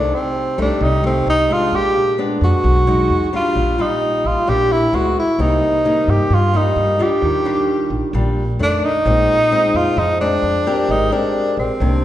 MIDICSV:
0, 0, Header, 1, 4, 480
1, 0, Start_track
1, 0, Key_signature, -3, "minor"
1, 0, Tempo, 458120
1, 1802, Time_signature, 4, 2, 24, 8
1, 12622, End_track
2, 0, Start_track
2, 0, Title_t, "Tenor saxophone"
2, 0, Program_c, 0, 66
2, 0, Note_on_c, 0, 62, 84
2, 154, Note_on_c, 0, 60, 86
2, 170, Note_off_c, 0, 62, 0
2, 618, Note_off_c, 0, 60, 0
2, 644, Note_on_c, 0, 62, 83
2, 866, Note_on_c, 0, 63, 87
2, 882, Note_off_c, 0, 62, 0
2, 1094, Note_off_c, 0, 63, 0
2, 1115, Note_on_c, 0, 60, 81
2, 1322, Note_off_c, 0, 60, 0
2, 1357, Note_on_c, 0, 63, 91
2, 1598, Note_on_c, 0, 65, 91
2, 1614, Note_off_c, 0, 63, 0
2, 1841, Note_on_c, 0, 67, 96
2, 1857, Note_off_c, 0, 65, 0
2, 2259, Note_off_c, 0, 67, 0
2, 2558, Note_on_c, 0, 66, 91
2, 3458, Note_off_c, 0, 66, 0
2, 3518, Note_on_c, 0, 65, 91
2, 3995, Note_on_c, 0, 63, 91
2, 4010, Note_off_c, 0, 65, 0
2, 4470, Note_on_c, 0, 65, 85
2, 4486, Note_off_c, 0, 63, 0
2, 4706, Note_on_c, 0, 67, 98
2, 4722, Note_off_c, 0, 65, 0
2, 4946, Note_on_c, 0, 64, 85
2, 4962, Note_off_c, 0, 67, 0
2, 5186, Note_on_c, 0, 66, 91
2, 5202, Note_off_c, 0, 64, 0
2, 5414, Note_off_c, 0, 66, 0
2, 5438, Note_on_c, 0, 64, 79
2, 5669, Note_on_c, 0, 63, 87
2, 5685, Note_off_c, 0, 64, 0
2, 6392, Note_on_c, 0, 67, 86
2, 6408, Note_off_c, 0, 63, 0
2, 6645, Note_on_c, 0, 65, 89
2, 6661, Note_off_c, 0, 67, 0
2, 6878, Note_on_c, 0, 63, 79
2, 6893, Note_off_c, 0, 65, 0
2, 7358, Note_on_c, 0, 67, 87
2, 7374, Note_off_c, 0, 63, 0
2, 8301, Note_off_c, 0, 67, 0
2, 9038, Note_on_c, 0, 62, 88
2, 9275, Note_on_c, 0, 63, 102
2, 9290, Note_off_c, 0, 62, 0
2, 10228, Note_on_c, 0, 65, 93
2, 10244, Note_off_c, 0, 63, 0
2, 10460, Note_on_c, 0, 63, 88
2, 10476, Note_off_c, 0, 65, 0
2, 10689, Note_off_c, 0, 63, 0
2, 10695, Note_on_c, 0, 62, 94
2, 11429, Note_on_c, 0, 63, 88
2, 11445, Note_off_c, 0, 62, 0
2, 11655, Note_on_c, 0, 62, 84
2, 11671, Note_off_c, 0, 63, 0
2, 12129, Note_off_c, 0, 62, 0
2, 12145, Note_on_c, 0, 60, 78
2, 12622, Note_off_c, 0, 60, 0
2, 12622, End_track
3, 0, Start_track
3, 0, Title_t, "Nylon-string guitar"
3, 0, Program_c, 1, 24
3, 0, Note_on_c, 1, 48, 53
3, 0, Note_on_c, 1, 55, 51
3, 0, Note_on_c, 1, 57, 59
3, 0, Note_on_c, 1, 63, 58
3, 567, Note_off_c, 1, 55, 0
3, 570, Note_off_c, 1, 57, 0
3, 572, Note_off_c, 1, 63, 0
3, 608, Note_on_c, 1, 55, 68
3, 613, Note_on_c, 1, 57, 60
3, 616, Note_on_c, 1, 63, 73
3, 823, Note_off_c, 1, 48, 0
3, 842, Note_on_c, 1, 48, 53
3, 1047, Note_off_c, 1, 55, 0
3, 1049, Note_off_c, 1, 57, 0
3, 1051, Note_off_c, 1, 63, 0
3, 1082, Note_on_c, 1, 55, 54
3, 1087, Note_on_c, 1, 57, 64
3, 1088, Note_on_c, 1, 63, 66
3, 1524, Note_off_c, 1, 55, 0
3, 1525, Note_off_c, 1, 57, 0
3, 1526, Note_off_c, 1, 63, 0
3, 1569, Note_on_c, 1, 56, 60
3, 1581, Note_on_c, 1, 62, 69
3, 1778, Note_off_c, 1, 48, 0
3, 1813, Note_on_c, 1, 46, 54
3, 2273, Note_off_c, 1, 56, 0
3, 2282, Note_off_c, 1, 62, 0
3, 2285, Note_on_c, 1, 56, 52
3, 2290, Note_on_c, 1, 59, 58
3, 2295, Note_on_c, 1, 62, 61
3, 2743, Note_off_c, 1, 46, 0
3, 2965, Note_off_c, 1, 56, 0
3, 2968, Note_off_c, 1, 59, 0
3, 2970, Note_off_c, 1, 62, 0
3, 3008, Note_on_c, 1, 56, 60
3, 3009, Note_on_c, 1, 63, 61
3, 3018, Note_on_c, 1, 66, 62
3, 3447, Note_off_c, 1, 56, 0
3, 3447, Note_off_c, 1, 63, 0
3, 3452, Note_off_c, 1, 66, 0
3, 3486, Note_on_c, 1, 55, 55
3, 3494, Note_on_c, 1, 62, 59
3, 3499, Note_on_c, 1, 65, 59
3, 3728, Note_on_c, 1, 46, 51
3, 3926, Note_off_c, 1, 55, 0
3, 3928, Note_off_c, 1, 62, 0
3, 3932, Note_off_c, 1, 65, 0
3, 3964, Note_on_c, 1, 55, 57
3, 3973, Note_on_c, 1, 65, 66
3, 4644, Note_off_c, 1, 55, 0
3, 4649, Note_off_c, 1, 65, 0
3, 4661, Note_off_c, 1, 46, 0
3, 4685, Note_on_c, 1, 46, 49
3, 4686, Note_on_c, 1, 55, 55
3, 4690, Note_on_c, 1, 62, 53
3, 4694, Note_on_c, 1, 65, 55
3, 5124, Note_off_c, 1, 55, 0
3, 5128, Note_off_c, 1, 62, 0
3, 5129, Note_off_c, 1, 65, 0
3, 5140, Note_off_c, 1, 46, 0
3, 5170, Note_on_c, 1, 56, 58
3, 5178, Note_on_c, 1, 59, 51
3, 5179, Note_on_c, 1, 64, 55
3, 5476, Note_off_c, 1, 56, 0
3, 5477, Note_off_c, 1, 59, 0
3, 5480, Note_off_c, 1, 64, 0
3, 5646, Note_on_c, 1, 48, 53
3, 5649, Note_on_c, 1, 55, 53
3, 5650, Note_on_c, 1, 58, 53
3, 5658, Note_on_c, 1, 63, 57
3, 6086, Note_off_c, 1, 55, 0
3, 6088, Note_off_c, 1, 58, 0
3, 6090, Note_off_c, 1, 63, 0
3, 6130, Note_on_c, 1, 55, 54
3, 6136, Note_on_c, 1, 63, 62
3, 6138, Note_on_c, 1, 58, 59
3, 6580, Note_off_c, 1, 48, 0
3, 6604, Note_off_c, 1, 55, 0
3, 6606, Note_off_c, 1, 58, 0
3, 6606, Note_off_c, 1, 63, 0
3, 6615, Note_on_c, 1, 43, 51
3, 6846, Note_on_c, 1, 55, 58
3, 6852, Note_on_c, 1, 58, 55
3, 6857, Note_on_c, 1, 63, 62
3, 7286, Note_off_c, 1, 55, 0
3, 7289, Note_off_c, 1, 58, 0
3, 7291, Note_off_c, 1, 63, 0
3, 7325, Note_on_c, 1, 55, 53
3, 7330, Note_on_c, 1, 62, 56
3, 7337, Note_on_c, 1, 65, 69
3, 7545, Note_off_c, 1, 43, 0
3, 7562, Note_on_c, 1, 51, 57
3, 7766, Note_off_c, 1, 55, 0
3, 7768, Note_off_c, 1, 62, 0
3, 7771, Note_off_c, 1, 65, 0
3, 7807, Note_on_c, 1, 55, 57
3, 7811, Note_on_c, 1, 62, 62
3, 7818, Note_on_c, 1, 65, 69
3, 8486, Note_off_c, 1, 55, 0
3, 8489, Note_off_c, 1, 62, 0
3, 8492, Note_off_c, 1, 65, 0
3, 8498, Note_off_c, 1, 51, 0
3, 8524, Note_on_c, 1, 46, 53
3, 8532, Note_on_c, 1, 55, 50
3, 8532, Note_on_c, 1, 62, 54
3, 8536, Note_on_c, 1, 65, 63
3, 8835, Note_off_c, 1, 55, 0
3, 8837, Note_off_c, 1, 62, 0
3, 8838, Note_off_c, 1, 65, 0
3, 8980, Note_off_c, 1, 46, 0
3, 9005, Note_on_c, 1, 51, 55
3, 9009, Note_on_c, 1, 57, 53
3, 9014, Note_on_c, 1, 62, 62
3, 9313, Note_off_c, 1, 51, 0
3, 9314, Note_off_c, 1, 57, 0
3, 9317, Note_off_c, 1, 62, 0
3, 9488, Note_on_c, 1, 56, 57
3, 9489, Note_on_c, 1, 46, 55
3, 9492, Note_on_c, 1, 60, 54
3, 9501, Note_on_c, 1, 63, 62
3, 9794, Note_off_c, 1, 56, 0
3, 9798, Note_off_c, 1, 60, 0
3, 9799, Note_off_c, 1, 63, 0
3, 9968, Note_on_c, 1, 56, 52
3, 9974, Note_on_c, 1, 60, 55
3, 9978, Note_on_c, 1, 63, 63
3, 10422, Note_off_c, 1, 46, 0
3, 10446, Note_on_c, 1, 53, 55
3, 10647, Note_off_c, 1, 56, 0
3, 10649, Note_off_c, 1, 60, 0
3, 10652, Note_off_c, 1, 63, 0
3, 10697, Note_on_c, 1, 56, 54
3, 10704, Note_on_c, 1, 60, 58
3, 11132, Note_off_c, 1, 56, 0
3, 11134, Note_off_c, 1, 60, 0
3, 11175, Note_on_c, 1, 60, 60
3, 11179, Note_on_c, 1, 67, 64
3, 11183, Note_on_c, 1, 70, 66
3, 11380, Note_off_c, 1, 53, 0
3, 11414, Note_on_c, 1, 56, 53
3, 11611, Note_off_c, 1, 60, 0
3, 11613, Note_off_c, 1, 67, 0
3, 11614, Note_off_c, 1, 70, 0
3, 11651, Note_on_c, 1, 60, 60
3, 11654, Note_on_c, 1, 67, 53
3, 11657, Note_on_c, 1, 70, 57
3, 12329, Note_off_c, 1, 60, 0
3, 12330, Note_off_c, 1, 67, 0
3, 12332, Note_off_c, 1, 70, 0
3, 12344, Note_off_c, 1, 56, 0
3, 12371, Note_on_c, 1, 48, 52
3, 12375, Note_on_c, 1, 51, 51
3, 12380, Note_on_c, 1, 58, 58
3, 12381, Note_on_c, 1, 62, 56
3, 12622, Note_off_c, 1, 48, 0
3, 12622, Note_off_c, 1, 51, 0
3, 12622, Note_off_c, 1, 58, 0
3, 12622, Note_off_c, 1, 62, 0
3, 12622, End_track
4, 0, Start_track
4, 0, Title_t, "Upright bass"
4, 0, Program_c, 2, 32
4, 0, Note_on_c, 2, 36, 86
4, 109, Note_off_c, 2, 36, 0
4, 609, Note_on_c, 2, 36, 83
4, 717, Note_off_c, 2, 36, 0
4, 845, Note_on_c, 2, 36, 96
4, 1290, Note_off_c, 2, 36, 0
4, 1327, Note_on_c, 2, 36, 90
4, 1548, Note_off_c, 2, 36, 0
4, 1805, Note_on_c, 2, 34, 80
4, 2026, Note_off_c, 2, 34, 0
4, 2527, Note_on_c, 2, 41, 82
4, 2636, Note_off_c, 2, 41, 0
4, 2765, Note_on_c, 2, 35, 97
4, 3210, Note_off_c, 2, 35, 0
4, 3246, Note_on_c, 2, 40, 81
4, 3467, Note_off_c, 2, 40, 0
4, 3721, Note_on_c, 2, 34, 86
4, 3945, Note_off_c, 2, 34, 0
4, 4447, Note_on_c, 2, 34, 82
4, 4556, Note_off_c, 2, 34, 0
4, 4689, Note_on_c, 2, 34, 87
4, 5132, Note_off_c, 2, 34, 0
4, 5165, Note_on_c, 2, 37, 81
4, 5387, Note_off_c, 2, 37, 0
4, 5642, Note_on_c, 2, 36, 80
4, 5865, Note_off_c, 2, 36, 0
4, 6367, Note_on_c, 2, 43, 82
4, 6476, Note_off_c, 2, 43, 0
4, 6601, Note_on_c, 2, 43, 94
4, 7048, Note_off_c, 2, 43, 0
4, 7084, Note_on_c, 2, 43, 84
4, 7307, Note_off_c, 2, 43, 0
4, 7566, Note_on_c, 2, 39, 82
4, 7787, Note_off_c, 2, 39, 0
4, 8280, Note_on_c, 2, 34, 80
4, 8393, Note_off_c, 2, 34, 0
4, 8522, Note_on_c, 2, 34, 96
4, 8969, Note_off_c, 2, 34, 0
4, 9004, Note_on_c, 2, 41, 84
4, 9227, Note_off_c, 2, 41, 0
4, 9485, Note_on_c, 2, 34, 84
4, 9707, Note_off_c, 2, 34, 0
4, 10205, Note_on_c, 2, 41, 85
4, 10316, Note_off_c, 2, 41, 0
4, 10443, Note_on_c, 2, 41, 97
4, 10889, Note_off_c, 2, 41, 0
4, 10925, Note_on_c, 2, 41, 80
4, 11147, Note_off_c, 2, 41, 0
4, 11406, Note_on_c, 2, 32, 89
4, 11628, Note_off_c, 2, 32, 0
4, 12126, Note_on_c, 2, 34, 81
4, 12236, Note_off_c, 2, 34, 0
4, 12367, Note_on_c, 2, 36, 94
4, 12622, Note_off_c, 2, 36, 0
4, 12622, End_track
0, 0, End_of_file